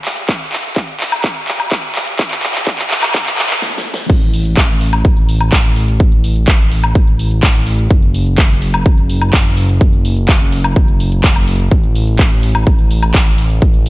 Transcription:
0.05 clap, open hi-hat
0.17 closed hi-hat, shaker
0.29 kick, clap, closed hi-hat, shaker
0.41 closed hi-hat, shaker
0.53 clap, open hi-hat
0.65 closed hi-hat, shaker
0.76 kick, clap, closed hi-hat, shaker
0.88 closed hi-hat, shaker
1.00 clap, open hi-hat
1.12 closed hi-hat, high woodblock, shaker
1.24 kick, clap, closed hi-hat, shaker
1.36 closed hi-hat, shaker
1.48 clap, open hi-hat
1.60 closed hi-hat, high woodblock, shaker
1.72 kick, clap, closed hi-hat, shaker
1.84 closed hi-hat, shaker
1.96 clap, open hi-hat
2.07 closed hi-hat, shaker
2.19 kick, clap, closed hi-hat, shaker
2.31 clap, closed hi-hat, shaker
2.43 clap, open hi-hat
2.55 clap, closed hi-hat, shaker
2.67 kick, clap, closed hi-hat, shaker
2.79 clap, closed hi-hat, shaker
2.91 clap, open hi-hat
3.03 clap, closed hi-hat, high woodblock, shaker
3.14 kick, clap, closed hi-hat, shaker
3.26 clap, closed hi-hat, shaker
3.38 clap, open hi-hat
3.50 clap, closed hi-hat, shaker
3.62 snare
3.78 snare
3.94 snare
4.10 A1, kick, closed hi-hat, crash, shaker
4.22 closed hi-hat, shaker
4.34 open hi-hat
4.45 closed hi-hat, shaker
4.57 kick, clap, closed hi-hat, shaker
4.69 closed hi-hat, shaker
4.81 open hi-hat
4.93 closed hi-hat, high woodblock, shaker
5.05 kick, closed hi-hat, shaker
5.17 closed hi-hat, shaker
5.29 open hi-hat
5.41 closed hi-hat, high woodblock, shaker
5.52 kick, clap, closed hi-hat, shaker
5.64 closed hi-hat, shaker
5.76 open hi-hat
5.88 closed hi-hat, shaker
6.00 kick, closed hi-hat, shaker
6.12 closed hi-hat, shaker
6.24 open hi-hat
6.36 closed hi-hat, shaker
6.48 kick, clap, closed hi-hat, shaker
6.60 closed hi-hat, shaker
6.72 open hi-hat
6.84 closed hi-hat, high woodblock, shaker
6.95 kick, closed hi-hat, shaker
7.07 closed hi-hat, shaker
7.19 open hi-hat
7.31 closed hi-hat, shaker
7.43 kick, clap, closed hi-hat, shaker
7.55 closed hi-hat, shaker
7.67 open hi-hat
7.79 closed hi-hat, shaker
7.91 F#1, kick, closed hi-hat, shaker
8.02 closed hi-hat, shaker
8.14 open hi-hat
8.26 closed hi-hat, shaker
8.38 kick, clap, closed hi-hat, shaker
8.50 closed hi-hat, shaker
8.62 open hi-hat
8.74 closed hi-hat, high woodblock, shaker
8.86 kick, closed hi-hat, shaker
8.98 closed hi-hat, shaker
9.10 open hi-hat
9.22 closed hi-hat, high woodblock, shaker
9.33 kick, clap, closed hi-hat, shaker
9.45 closed hi-hat, shaker
9.57 open hi-hat
9.69 closed hi-hat, shaker
9.81 kick, closed hi-hat, shaker
9.93 closed hi-hat, shaker
10.05 open hi-hat
10.17 closed hi-hat, shaker
10.29 kick, clap, closed hi-hat, shaker
10.41 closed hi-hat, shaker
10.52 open hi-hat
10.64 closed hi-hat, high woodblock, shaker
10.76 kick, closed hi-hat, shaker
10.88 closed hi-hat, shaker
11.00 open hi-hat
11.12 closed hi-hat, shaker
11.24 kick, clap, closed hi-hat, shaker
11.36 closed hi-hat, high woodblock, shaker
11.48 open hi-hat
11.60 closed hi-hat, shaker
11.71 A1, kick, closed hi-hat, shaker
11.84 closed hi-hat, shaker
11.95 open hi-hat, ride
12.07 closed hi-hat, shaker
12.19 kick, clap, closed hi-hat, shaker
12.31 closed hi-hat, shaker
12.43 open hi-hat, ride
12.55 closed hi-hat, high woodblock, shaker
12.67 kick, closed hi-hat, shaker
12.79 closed hi-hat, shaker
12.91 open hi-hat, ride
13.03 closed hi-hat, high woodblock, shaker
13.14 kick, clap, closed hi-hat, shaker
13.26 closed hi-hat, shaker
13.38 open hi-hat, ride
13.50 closed hi-hat, shaker
13.62 kick, closed hi-hat, shaker
13.74 closed hi-hat, shaker
13.86 open hi-hat, ride

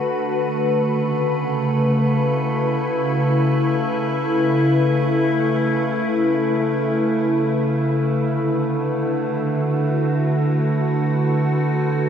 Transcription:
Already playing: D3 A3 F#4 B4
0.69 C#3
2.06 E4
8.20 D3
9.15 F#4

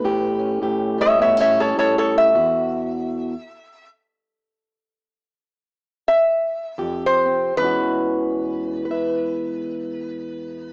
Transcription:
Already playing: B4
0.04 A2 G4
0.39 C#4
0.62 A2 G4
0.98 G3 C#5 E5
1.19 A2 B3 C#5 E5
1.37 C#4 C#5
1.41 E5
1.55 G3
1.60 A4 C#5
1.77 A2 A4 C#5
1.98 A4 C#5
2.18 E5
2.34 E2 F#4
6.08 E5
6.78 F2 G4
7.06 C5
7.25 C4
7.56 E2 E3 B4
7.61 G#3 C#4 F#4
8.85 B4
8.91 E5

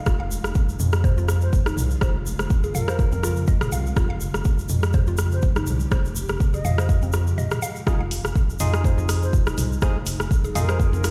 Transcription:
Already playing: F3 G#3
0.06 F1 C#3 F4, kick, cross-stick, shaker
0.20 F5
0.31 shaker
0.44 F1, cross-stick, shaker
0.55 kick, shaker
0.69 shaker
0.80 F2, mid tom, shaker
0.92 cross-stick, shaker
1.04 C5, kick, mid tom, shaker
1.18 F2 F4, shaker
1.28 cross-stick, shaker
1.41 C5, shaker
1.53 F1, kick, shaker
1.66 D#4, cross-stick, shaker
1.77 C2, mid tom, shaker
1.91 shaker
2.01 F1 C5, kick, cross-stick, shaker
2.26 shaker
2.39 F1, cross-stick, shaker
2.50 kick, shaker
2.64 G#4, shaker
2.75 F2 A#4 F5, mid tom, shaker
2.88 C5, cross-stick, shaker
2.99 kick, shaker
3.12 F2 C4 A#4, shaker
3.23 F4, cross-stick, shaker
3.36 shaker
3.47 F1 D#5, kick, shaker
3.61 G#4, cross-stick, mid tom, shaker
3.72 C2 F5, shaker
3.86 shaker
3.96 F1 F4 G4, kick, cross-stick, shaker
4.10 F5
4.21 shaker
4.34 F1, cross-stick, shaker
4.45 kick, shaker
4.58 shaker
4.69 F2, mid tom, shaker
4.83 cross-stick, shaker
4.93 C5, kick, mid tom, shaker
5.07 F2 F4, shaker
5.17 cross-stick, shaker
5.32 C5, shaker
5.42 F1, kick, shaker
5.56 D#4, cross-stick, shaker
5.67 C2, mid tom, shaker
5.80 shaker
5.91 F1 C5, kick, cross-stick, shaker
6.05 shaker
6.16 shaker
6.28 F1, cross-stick, shaker
6.40 kick, shaker
6.54 G#4 D#5, shaker
6.65 F2 F5, mid tom, shaker
6.78 C5, cross-stick, shaker
6.89 kick, shaker
7.02 F2 C4, shaker
7.13 F4, cross-stick, shaker
7.27 shaker
7.38 D#5, mid tom, shaker
7.51 G#4, cross-stick, mid tom, shaker
7.62 F5, shaker
7.76 shaker
7.87 F1 C3 F3 G#3 D#4 F4 G#4, kick, cross-stick, shaker
8.01 F5
8.11 open hi-hat, shaker
8.25 F1, cross-stick, shaker
8.36 kick, shaker
8.50 shaker
8.59 F2 D#4 F4 G#4, mid tom, open hi-hat, shaker
8.74 cross-stick, shaker
8.84 C5, kick, mid tom, shaker
8.98 F2 F4, shaker
9.09 cross-stick, open hi-hat, shaker
9.23 C5, shaker
9.33 F1, kick, shaker
9.47 D#4, cross-stick, shaker
9.58 C2, mid tom, open hi-hat, shaker
9.72 shaker
9.82 F1 D#4 F4 G#4 C5, kick, cross-stick, shaker
10.06 open hi-hat, shaker
10.20 F1, cross-stick, shaker
10.31 kick, shaker
10.44 G#4, shaker
10.55 F2 D#4 F4 G#4 A#4 F5, mid tom, open hi-hat, shaker
10.69 C5, cross-stick, shaker
10.80 kick, shaker
10.93 F2 C4 A#4, shaker
11.04 F4, cross-stick, open hi-hat, shaker

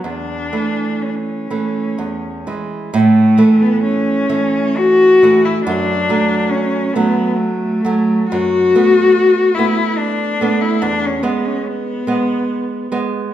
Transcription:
0.04 E2 D4
0.53 E3 A3
1.02 C#4
1.09 D4
1.15 C#4
1.50 E3 A3
1.99 E2
2.47 E3 G#3
2.94 A2 A3
3.38 E3 A3
3.61 B3
3.83 C#4
4.29 E3 A3
4.77 F#4
5.23 E3 A3
5.45 E4
5.64 F#2 D4
6.09 F#3 A3
6.50 C#4
6.94 F#3 A3 B3
7.36 A3
7.85 F#3 A3
8.29 F#2 F#4
8.75 A3 B3
9.55 A3 E4
9.59 B3
9.97 D4
10.41 A3 B3
10.61 E4
10.82 E2 D4
11.05 C#4
11.23 G#3 B3
11.45 C#4
11.66 B3
12.07 G#3 B3
12.92 G#3 B3

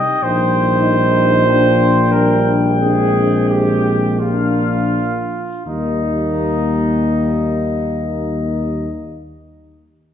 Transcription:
Already playing: D#5 G5
0.23 A#1 G3 D#4 C5
0.82 D#4
1.45 F3 D4 G5
2.11 G3 A#4
2.80 G#3 C4 G#4
3.49 G4
4.19 A#3 D4 F4 F5
5.66 D#2 G3 A#3 D#4 D#5

